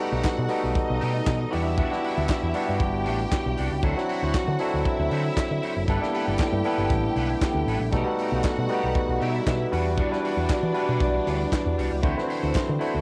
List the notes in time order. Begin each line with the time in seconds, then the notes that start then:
Already playing: G3 A3 B3 D#4 F#4 G4 A4 F#5
0.00 D#4 G4
0.11 B1 A3 D#4 G4
0.24 muted clean electric guitar stroke, muted picked electric bass stroke, kick, snare, clap, closed hi-hat
0.26 clap
0.38 B2, muted clean electric guitar stroke
0.48 G3 A3 B3 D#4 F#4 G4 A4, open hi-hat
0.63 B1 A3 D#4 G4
0.75 D#4 D#5, kick, closed hi-hat
0.89 B1, muted clean electric guitar stroke
1.00 B2 A3 D#4 G4, open hi-hat
1.14 muted clean electric guitar stroke
1.26 B2, muted clean electric guitar stroke, kick, snare, clap
1.40 muted clean electric guitar stroke
1.51 E2 G3 B3 D4 E4 F#4 G4 E5, open hi-hat
1.65 muted clean electric guitar stroke
1.77 G3 D4 F#4, kick, closed hi-hat
1.91 B3 D4 E4 F#4 G4, muted clean electric guitar stroke, snare
2.03 G3 D4 F#4, open hi-hat
2.17 D2 G3 D4 F#4
2.29 muted clean electric guitar stroke, muted picked electric bass stroke, kick, snare, clap
2.31 clap
2.42 E2, muted clean electric guitar stroke
2.53 G3 B3 D4 E4 F#4, open hi-hat
2.62 G4
2.67 G2 G3 D4 F#4
2.79 G1 G4 G5, kick, closed hi-hat
2.94 muted clean electric guitar stroke
3.04 A1 G3 D4 F#4, open hi-hat
3.19 muted clean electric guitar stroke
3.31 muted clean electric guitar stroke, kick, snare, clap, closed hi-hat
3.46 B1, muted clean electric guitar stroke
3.57 C2 G3 D4 F#4, open hi-hat
3.72 C#2, muted clean electric guitar stroke
3.82 D2 F#3 C4 D4 E4 F#4 A4 C5 F#5, kick, closed hi-hat
3.96 F#3 C4 D4 E4 F#4, muted clean electric guitar stroke, snare
4.09 E4 F#4 C5, open hi-hat
4.23 D2 E4 F#4 C5
4.33 muted picked electric bass stroke, kick, snare, clap, closed hi-hat
4.47 D3, muted clean electric guitar stroke
4.58 F#3 C4 D4 E4 F#4 A4 C5, open hi-hat
4.73 D2 E4 F#4 C5
4.85 E4 E5, kick, closed hi-hat
5.00 D2, muted clean electric guitar stroke
5.11 D3 E4 F#4 C5, open hi-hat
5.25 muted clean electric guitar stroke
5.37 muted clean electric guitar stroke, kick, snare, clap, closed hi-hat
5.50 D3, muted clean electric guitar stroke
5.62 E4 F#4 C5, open hi-hat
5.76 F#1, muted clean electric guitar stroke
5.87 G1 D3 G3 A3 B3 D4 E4 G4 A4 B4 G5, kick, closed hi-hat
6.01 G3 A#3 D4 E4 A4, muted clean electric guitar stroke, snare
6.07 B3
6.13 E4 A4 B4, open hi-hat
6.27 G1 E4 A4 B4
6.39 muted clean electric guitar stroke, muted picked electric bass stroke, kick, snare, clap
6.41 clap
6.53 G2, muted clean electric guitar stroke
6.64 G3 B3 D4 E4 A4 B4, open hi-hat
6.78 G1 E4 A4 B4
6.90 A1, kick, closed hi-hat
7.04 muted clean electric guitar stroke
7.16 B1 E4 A4 B4, open hi-hat
7.29 muted clean electric guitar stroke
7.42 muted clean electric guitar stroke, kick, snare, clap
7.55 D2, muted clean electric guitar stroke
7.66 A1 E4 A4 B4, open hi-hat
7.80 A#1, muted clean electric guitar stroke
7.91 B1 B2 G3 A3 B3 D#4 F#4 A4 F#5, kick, closed hi-hat
7.95 D#4 G4
8.04 G3 B3 D#4 F#4 A4, muted clean electric guitar stroke
8.19 A3 D#4 G4, open hi-hat
8.32 B1 A3 D#4 G4
8.44 muted picked electric bass stroke, muted clean electric guitar stroke, kick, snare, clap, closed hi-hat
8.45 clap
8.58 B2, muted clean electric guitar stroke
8.68 G3 A3 B3 D#4 F#4 B4, open hi-hat
8.73 D#4 G4
8.84 B1 A3 D#4 G4
8.95 kick, closed hi-hat
9.09 B1, muted clean electric guitar stroke
9.20 B2 A3 D#4 E4 G4 E5, open hi-hat
9.35 muted clean electric guitar stroke
9.47 B2, muted clean electric guitar stroke, kick, snare, clap, closed hi-hat
9.60 muted clean electric guitar stroke
9.71 E2 E3 G3 D4 E4 F#4 B4 D5, open hi-hat
9.87 muted clean electric guitar stroke
9.97 G3 D4 F#4, kick, closed hi-hat
10.11 G3 D4 E4 F#4 B4, muted clean electric guitar stroke, snare
10.24 G3 D4 F#4, open hi-hat
10.37 E2 G3 D4 F#4
10.49 muted clean electric guitar stroke, muted picked electric bass stroke, kick, snare, clap
10.51 clap
10.63 E3, muted clean electric guitar stroke
10.73 G3 D4 E4 F#4 B4, open hi-hat
10.77 D4 F#4
10.89 B2 G3 D4 F#4
11.00 B1, kick, closed hi-hat
11.15 muted clean electric guitar stroke
11.26 D2 G3 D4 F#4, open hi-hat
11.40 muted clean electric guitar stroke
11.52 muted clean electric guitar stroke, kick, snare, clap, closed hi-hat
11.66 E2, muted clean electric guitar stroke
11.78 C2 G3 D4 F#4, open hi-hat
11.91 C#2, muted clean electric guitar stroke
12.02 D2 D3 E3 A3 C4 D4 E4 F#4 C5, kick, closed hi-hat
12.17 A3 D4 E4 F#4 B4, muted clean electric guitar stroke, snare
12.24 E4 C5
12.29 F#4 C5, open hi-hat
12.42 D2 E4 F#4 C5
12.55 muted clean electric guitar stroke, muted picked electric bass stroke, kick, snare, clap, closed hi-hat
12.57 clap
12.68 D3, muted clean electric guitar stroke
12.79 A3 D4 E4 F#4 C5, open hi-hat
12.93 D2 E4 F#4 C5